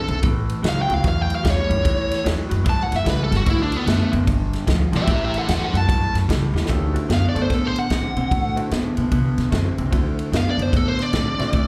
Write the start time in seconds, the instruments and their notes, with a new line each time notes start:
Already playing: lead electric guitar A4
0.08 upright bass B1, clean electric guitar D3 C4, ride
0.22 upright bass A1, clean electric guitar A2 E3, kick, ride
0.49 ride
0.63 upright bass C#2, clean electric guitar A2 F#3, snare, ride
0.69 lead electric guitar F5
0.82 lead electric guitar G5
0.88 upright bass C#2, clean electric guitar A2 F#3, ride
0.94 lead electric guitar F5
1.02 upright bass E2, clean electric guitar A2 F#3, kick, snare, ride
1.08 lead electric guitar F5
1.21 lead electric guitar G5
1.30 ride
1.35 lead electric guitar F5
1.43 upright bass E2, clean electric guitar A2 G3, kick, snare, ride
1.50 lead electric guitar C#5
1.69 upright bass F#2, clean electric guitar A2 G3, ride
1.83 upright bass E2, clean electric guitar A2 E3, kick, ride
2.11 snare, ride
2.24 upright bass E2, clean electric guitar A2 F#3, snare, ride
2.49 upright bass F#2, clean electric guitar A2 F#3, ride
2.64 upright bass G2, clean electric guitar A2 F#3, kick, ride
2.69 lead electric guitar A5
2.83 lead electric guitar F#5
2.92 upright bass F#2, lead electric guitar E5, snare, ride
3.04 upright bass C#2, clean electric guitar A2 G3, kick, snare, ride
3.10 lead electric guitar B4
3.24 lead electric guitar A4
3.30 upright bass G1, clean electric guitar A2 G3, snare, ride
3.37 lead electric guitar F#4
3.45 upright bass D2, clean electric guitar D3 A3, kick, ride
3.50 lead electric guitar E4
3.63 lead electric guitar D4
3.72 ride
3.76 lead electric guitar B3
3.86 upright bass F#2, clean electric guitar D3 B3, lead electric guitar A3, snare, ride
4.11 upright bass F#2, clean electric guitar D3 B3, ride
4.26 upright bass G1, clean electric guitar G2 D3, kick, ride
4.53 snare, ride
4.66 upright bass D2, clean electric guitar G2 F3, kick, snare, ride
4.92 upright bass B1, clean electric guitar G2 F3, snare, ride
4.96 lead electric guitar G4 E5
5.07 upright bass A1, clean electric guitar A2 E3, lead electric guitar G4, kick, ride
5.12 lead electric guitar E5
5.24 lead electric guitar G4 E5
5.34 lead electric guitar A4, ride
5.39 lead electric guitar F#5
5.47 upright bass E2, clean electric guitar A2 F#3, lead electric guitar A4, snare, ride
5.51 lead electric guitar F#5
5.64 lead electric guitar A4 F#5
5.73 upright bass F#2, clean electric guitar A2 F#3, lead electric guitar A5, ride
5.87 upright bass G2, clean electric guitar A2 F#3, kick, ride
6.14 upright bass F#2, snare, ride
6.28 upright bass C#2, clean electric guitar A2 G3, kick, snare, ride
6.54 upright bass E2, clean electric guitar A2 G3, snare
6.66 upright bass D2, clean electric guitar D3 A3, upright piano A#3 C#4 D#4 F4 G4, kick, snare, ride
6.93 upright piano A3 C4 D4 E4 F#4, ride
7.09 upright bass F#2, clean electric guitar D3 B3, snare, ride
7.13 lead electric guitar F5
7.29 lead electric guitar D5
7.34 upright bass F#2, clean electric guitar D3 B3, upright piano A3 C4 D4 E4 A4, ride
7.42 lead electric guitar C5
7.50 upright bass A2, clean electric guitar D3 B3, kick, snare, ride
7.54 lead electric guitar A4
7.67 lead electric guitar C5
7.76 lead electric guitar F#5, ride
7.90 upright bass A2, clean electric guitar D3 C4, kick, snare, ride
8.16 upright bass B2, clean electric guitar D3 C4, ride
8.31 upright bass A2, clean electric guitar D3 A3, kick, ride
8.55 upright piano A3 C4 D4 E4 F#4, ride
8.71 upright bass A2, clean electric guitar D3 B3, snare, ride
8.97 upright bass B2, clean electric guitar D3 B3, ride
9.11 upright bass C3, clean electric guitar D3 B3, kick, ride
9.38 upright bass B2, snare, ride
9.50 upright bass F#2, clean electric guitar D3 C4, upright piano A3 C4 D4 E4 F#4, kick, snare, ride
9.78 upright bass C2, clean electric guitar D3 C4, ride
9.91 upright bass D2, clean electric guitar D3 A3, upright piano A3 C4 D4 E4 F#4, kick, ride
10.19 ride
10.32 upright bass F#2, clean electric guitar D3 B3, snare, ride
10.37 lead electric guitar F5
10.50 lead electric guitar D5
10.58 upright bass F#2, clean electric guitar D3 B3, ride
10.62 lead electric guitar C5
10.73 upright bass A2, clean electric guitar D3 B3, kick, snare, ride
10.77 lead electric guitar A4
10.88 lead electric guitar C5
10.99 lead electric guitar D5, snare, ride
11.13 upright bass A2, clean electric guitar D3 C4, kick, snare, ride
11.38 upright bass B2, clean electric guitar D3 C4, upright piano A3 C4 D4 E4 F#4, snare, ride
11.53 upright bass A2, clean electric guitar D3 A3, kick, ride